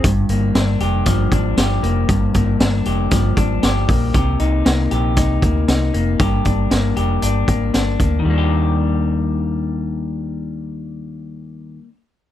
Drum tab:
HH |xxxxxxxx|xxxxxxxo|xxxxxxxx|xxxxxxxx|
SD |--o-o-o-|--o-o-o-|--o-o-o-|--o---o-|
BD |o---oo--|oo--oo-o|o---oo--|oo---o-o|

HH |--------|--------|
SD |--------|--------|
BD |--------|--------|